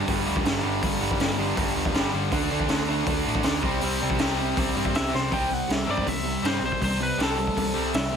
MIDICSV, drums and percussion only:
0, 0, Header, 1, 2, 480
1, 0, Start_track
1, 0, Tempo, 374766
1, 1053, Time_signature, 4, 2, 24, 8
1, 10458, End_track
2, 0, Start_track
2, 0, Title_t, "Drums"
2, 99, Note_on_c, 9, 46, 61
2, 103, Note_on_c, 9, 36, 107
2, 227, Note_off_c, 9, 46, 0
2, 232, Note_off_c, 9, 36, 0
2, 462, Note_on_c, 9, 36, 92
2, 580, Note_on_c, 9, 46, 64
2, 590, Note_off_c, 9, 36, 0
2, 594, Note_on_c, 9, 38, 115
2, 708, Note_off_c, 9, 46, 0
2, 722, Note_off_c, 9, 38, 0
2, 1058, Note_on_c, 9, 46, 61
2, 1060, Note_on_c, 9, 36, 100
2, 1186, Note_off_c, 9, 46, 0
2, 1188, Note_off_c, 9, 36, 0
2, 1420, Note_on_c, 9, 36, 90
2, 1534, Note_on_c, 9, 46, 61
2, 1548, Note_off_c, 9, 36, 0
2, 1548, Note_on_c, 9, 38, 102
2, 1662, Note_off_c, 9, 46, 0
2, 1677, Note_off_c, 9, 38, 0
2, 2012, Note_on_c, 9, 46, 63
2, 2015, Note_on_c, 9, 36, 120
2, 2140, Note_off_c, 9, 46, 0
2, 2143, Note_off_c, 9, 36, 0
2, 2374, Note_on_c, 9, 36, 86
2, 2489, Note_on_c, 9, 46, 56
2, 2502, Note_off_c, 9, 36, 0
2, 2503, Note_on_c, 9, 38, 116
2, 2617, Note_off_c, 9, 46, 0
2, 2631, Note_off_c, 9, 38, 0
2, 2967, Note_on_c, 9, 46, 58
2, 2970, Note_on_c, 9, 36, 103
2, 3095, Note_off_c, 9, 46, 0
2, 3098, Note_off_c, 9, 36, 0
2, 3329, Note_on_c, 9, 36, 82
2, 3439, Note_on_c, 9, 46, 55
2, 3453, Note_on_c, 9, 38, 103
2, 3457, Note_off_c, 9, 36, 0
2, 3567, Note_off_c, 9, 46, 0
2, 3581, Note_off_c, 9, 38, 0
2, 3926, Note_on_c, 9, 46, 62
2, 3929, Note_on_c, 9, 36, 113
2, 4054, Note_off_c, 9, 46, 0
2, 4057, Note_off_c, 9, 36, 0
2, 4288, Note_on_c, 9, 36, 90
2, 4393, Note_on_c, 9, 46, 70
2, 4407, Note_on_c, 9, 38, 112
2, 4416, Note_off_c, 9, 36, 0
2, 4521, Note_off_c, 9, 46, 0
2, 4535, Note_off_c, 9, 38, 0
2, 4649, Note_on_c, 9, 36, 96
2, 4777, Note_off_c, 9, 36, 0
2, 4880, Note_on_c, 9, 46, 64
2, 5008, Note_off_c, 9, 46, 0
2, 5250, Note_on_c, 9, 36, 84
2, 5361, Note_on_c, 9, 46, 64
2, 5375, Note_on_c, 9, 38, 118
2, 5378, Note_off_c, 9, 36, 0
2, 5489, Note_off_c, 9, 46, 0
2, 5503, Note_off_c, 9, 38, 0
2, 5853, Note_on_c, 9, 46, 65
2, 5855, Note_on_c, 9, 36, 106
2, 5981, Note_off_c, 9, 46, 0
2, 5983, Note_off_c, 9, 36, 0
2, 6214, Note_on_c, 9, 36, 79
2, 6337, Note_on_c, 9, 46, 61
2, 6342, Note_off_c, 9, 36, 0
2, 6351, Note_on_c, 9, 38, 110
2, 6465, Note_off_c, 9, 46, 0
2, 6479, Note_off_c, 9, 38, 0
2, 6589, Note_on_c, 9, 38, 60
2, 6717, Note_off_c, 9, 38, 0
2, 6813, Note_on_c, 9, 46, 54
2, 6814, Note_on_c, 9, 36, 98
2, 6941, Note_off_c, 9, 46, 0
2, 6942, Note_off_c, 9, 36, 0
2, 7299, Note_on_c, 9, 46, 56
2, 7313, Note_on_c, 9, 38, 100
2, 7427, Note_off_c, 9, 46, 0
2, 7441, Note_off_c, 9, 38, 0
2, 7654, Note_on_c, 9, 36, 84
2, 7774, Note_off_c, 9, 36, 0
2, 7774, Note_on_c, 9, 36, 96
2, 7775, Note_on_c, 9, 46, 61
2, 7902, Note_off_c, 9, 36, 0
2, 7903, Note_off_c, 9, 46, 0
2, 8257, Note_on_c, 9, 46, 61
2, 8271, Note_on_c, 9, 38, 113
2, 8385, Note_off_c, 9, 46, 0
2, 8399, Note_off_c, 9, 38, 0
2, 8610, Note_on_c, 9, 36, 76
2, 8730, Note_off_c, 9, 36, 0
2, 8730, Note_on_c, 9, 36, 94
2, 8731, Note_on_c, 9, 46, 59
2, 8859, Note_off_c, 9, 36, 0
2, 8860, Note_off_c, 9, 46, 0
2, 9217, Note_on_c, 9, 46, 59
2, 9231, Note_on_c, 9, 38, 104
2, 9345, Note_off_c, 9, 46, 0
2, 9359, Note_off_c, 9, 38, 0
2, 9573, Note_on_c, 9, 36, 76
2, 9694, Note_off_c, 9, 36, 0
2, 9694, Note_on_c, 9, 36, 91
2, 9696, Note_on_c, 9, 46, 55
2, 9822, Note_off_c, 9, 36, 0
2, 9824, Note_off_c, 9, 46, 0
2, 10169, Note_on_c, 9, 46, 53
2, 10184, Note_on_c, 9, 38, 114
2, 10297, Note_off_c, 9, 46, 0
2, 10312, Note_off_c, 9, 38, 0
2, 10458, End_track
0, 0, End_of_file